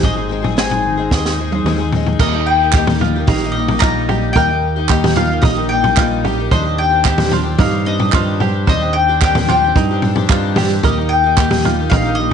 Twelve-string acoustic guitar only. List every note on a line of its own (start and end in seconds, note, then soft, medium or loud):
0.03 0.17 G#2 medium
0.03 0.17 D#3 medium
0.03 0.17 G#3 medium
0.03 0.17 C4 medium
0.03 0.16 D#4 medium
0.03 0.15 G#4 medium
0.16 0.30 C4 soft
0.16 0.31 D#4 soft
0.16 0.30 G#4 soft
0.20 0.28 G#3 soft
0.29 0.44 G#3 soft
0.29 0.43 C4 soft
0.29 0.43 D#4 medium
0.29 0.41 G#4 medium
0.43 0.57 G#3 soft
0.43 0.57 C4 soft
0.43 0.57 D#4 soft
0.43 0.57 G#4 soft
0.57 0.98 G#2 medium
0.57 0.98 D#3 medium
0.57 0.98 G#3 medium
0.57 0.99 C4 medium
0.57 0.97 D#4 medium
0.57 0.96 G#4 medium
0.97 1.27 G#3 soft
0.97 1.26 C4 soft
0.97 1.25 D#4 soft
0.97 1.24 G#4 soft
1.25 1.37 G#3 soft
1.25 1.39 C4 soft
1.25 1.39 D#4 soft
1.25 1.39 G#4 soft
1.38 1.52 G#3 soft
1.38 1.53 C4 soft
1.38 1.51 D#4 soft
1.38 1.51 G#4 medium
1.52 1.66 G#3 soft
1.52 1.66 C4 soft
1.52 1.66 D#4 soft
1.52 1.66 G#4 soft
1.66 1.80 G#2 medium
1.66 1.80 D#3 medium
1.66 1.80 G#3 medium
1.66 1.80 C4 medium
1.66 1.79 D#4 medium
1.66 1.77 G#4 medium
1.78 1.93 C4 soft
1.78 1.93 D#4 soft
1.78 1.92 G#4 soft
1.83 1.92 G#3 soft
1.93 2.20 G#3 soft
1.93 2.21 C4 soft
1.93 2.21 D#4 medium
1.93 2.22 G#4 medium
2.21 2.34 D#3 medium
2.21 2.34 G3 medium
2.21 2.34 A#3 medium
2.21 2.34 D#4 medium
2.21 2.32 G4 medium
2.33 2.62 A#3 soft
2.33 2.61 D#4 soft
2.33 2.60 G4 soft
2.61 2.75 A#3 soft
2.61 2.75 D#4 soft
2.61 2.74 G4 soft
2.75 3.02 D#3 medium
2.75 3.01 G3 medium
2.75 3.02 A#3 medium
2.75 3.02 D#4 medium
2.75 3.03 G4 medium
3.03 3.15 G3 medium
3.03 3.16 A#3 medium
3.03 3.16 D#4 medium
3.03 3.15 G4 medium
3.16 3.44 A#3 soft
3.16 3.43 D#4 soft
3.16 3.42 G4 soft
3.43 3.55 A#3 soft
3.43 3.57 D#4 soft
3.43 3.56 G4 soft
3.55 3.68 G3 soft
3.55 3.69 A#3 medium
3.55 3.70 D#4 medium
3.59 3.68 G4 medium
3.69 3.82 A#3 soft
3.69 3.82 D#4 soft
3.69 3.82 G4 soft
3.82 4.09 D#3 medium
3.82 4.08 G3 medium
3.82 4.08 A#3 medium
3.82 4.10 D#4 medium
3.82 4.10 G4 medium
4.09 4.35 G3 soft
4.09 4.35 A#3 medium
4.09 4.36 D#4 medium
4.09 4.36 G4 medium
4.35 4.49 D#3 medium
4.35 4.49 G3 medium
4.35 4.50 A#3 medium
4.35 4.50 D#4 medium
4.35 4.49 G4 medium
4.50 4.78 A#3 soft
4.50 4.77 D#4 soft
4.50 4.75 G4 soft
4.76 4.89 A#3 soft
4.76 4.90 D#4 soft
4.76 4.90 G4 medium
4.89 5.16 D#3 medium
4.89 5.14 G3 medium
4.89 5.15 A#3 medium
4.89 5.16 D#4 medium
4.89 5.18 G4 medium
5.15 5.30 G3 medium
5.15 5.30 A#3 medium
5.15 5.30 D#4 medium
5.15 5.28 G4 medium
5.29 5.57 A#3 soft
5.29 5.56 D#4 soft
5.29 5.54 G4 soft
5.55 5.70 A#3 soft
5.55 5.71 D#4 soft
5.55 5.70 G4 medium
5.70 5.84 G3 medium
5.70 5.85 A#3 medium
5.70 5.84 D#4 medium
5.70 5.82 G4 medium
5.84 5.98 A#3 soft
5.84 5.98 D#4 soft
5.84 5.98 G4 soft
5.98 6.25 D#3 medium
5.98 6.23 G3 medium
5.98 6.25 A#3 medium
5.98 6.26 D#4 medium
5.98 6.26 G4 medium
6.24 6.38 G3 soft
6.24 6.39 A#3 medium
6.24 6.38 D#4 medium
6.24 6.36 G4 medium
6.38 6.52 A#3 soft
6.38 6.53 D#4 soft
6.38 6.52 G4 soft
6.51 6.65 D#3 medium
6.51 6.65 G3 medium
6.51 6.65 C4 medium
6.51 6.64 D4 medium
6.51 6.62 G4 medium
6.63 6.92 C4 soft
6.63 6.91 D4 soft
6.63 6.89 G4 soft
6.90 7.05 C4 soft
6.90 7.06 D4 soft
6.90 7.05 G4 medium
7.05 7.32 D#3 medium
7.05 7.30 G3 medium
7.05 7.31 C4 medium
7.05 7.32 D4 medium
7.05 7.33 G4 medium
7.31 7.45 G3 medium
7.31 7.45 C4 medium
7.31 7.44 D4 medium
7.35 7.42 G4 medium
7.43 7.72 C4 soft
7.43 7.71 D4 soft
7.43 7.69 G4 medium
7.70 7.85 C4 soft
7.70 7.86 D4 soft
7.70 7.85 G4 soft
7.85 7.99 G3 medium
7.85 8.00 C4 medium
7.85 7.99 D4 medium
7.85 7.98 G4 medium
7.99 8.14 C4 soft
7.99 8.14 D4 soft
7.99 8.13 G4 soft
8.13 8.40 D#3 medium
8.13 8.39 G3 medium
8.13 8.40 C4 medium
8.13 8.41 D4 medium
8.13 8.42 G4 medium
8.40 8.67 G3 medium
8.40 8.68 C4 medium
8.40 8.68 D4 medium
8.40 8.69 G4 medium
8.67 8.81 D#3 medium
8.67 8.82 G3 medium
8.67 8.82 C4 medium
8.67 8.82 D4 medium
8.67 8.80 G4 medium
8.81 9.10 C4 soft
8.81 9.09 D4 soft
8.81 9.07 G4 soft
9.09 9.21 C4 soft
9.09 9.22 D4 soft
9.09 9.22 G4 medium
9.22 9.49 D#3 medium
9.22 9.48 G3 medium
9.22 9.49 C4 medium
9.22 9.49 D4 medium
9.22 9.50 G4 medium
9.49 9.63 G3 medium
9.49 9.63 C4 medium
9.49 9.64 D4 medium
9.49 9.63 G4 medium
9.64 9.92 C4 soft
9.64 9.91 D4 soft
9.64 9.90 G4 soft
9.91 10.03 C4 soft
9.91 10.04 D4 soft
9.91 10.03 G4 soft
10.04 10.17 G3 medium
10.04 10.17 C4 medium
10.04 10.17 D4 medium
10.04 10.15 G4 medium
10.16 10.29 C4 soft
10.16 10.30 D4 medium
10.16 10.30 G4 medium
10.30 10.57 D#3 medium
10.30 10.55 G3 medium
10.30 10.56 C4 medium
10.30 10.57 D4 medium
10.30 10.58 G4 medium
10.56 10.70 G3 medium
10.56 10.71 C4 medium
10.56 10.71 D4 medium
10.56 10.69 G4 medium
10.71 10.85 C4 soft
10.71 10.85 D4 soft
10.71 10.84 G4 soft
10.85 10.98 D#3 medium
10.85 10.98 G3 medium
10.85 10.98 A#3 medium
10.85 10.99 D#4 medium
10.85 10.97 G4 medium
10.98 11.25 A#3 soft
10.98 11.25 D#4 soft
10.98 11.22 G4 soft
11.24 11.37 A#3 soft
11.24 11.37 D#4 soft
11.24 11.37 G4 soft
11.37 11.64 D#3 medium
11.37 11.63 G3 medium
11.37 11.63 A#3 medium
11.37 11.64 D#4 medium
11.37 11.65 G4 medium
11.64 11.78 G3 soft
11.64 11.78 A#3 medium
11.64 11.79 D#4 medium
11.64 11.78 G4 medium
11.79 12.07 A#3 soft
11.79 12.05 D#4 soft
11.79 12.04 G4 soft
12.05 12.19 A#3 soft
12.05 12.19 D#4 soft
12.05 12.19 G4 medium
12.19 12.32 G3 medium
12.19 12.33 A#3 medium
12.19 12.33 D#4 medium
12.19 12.32 G4 medium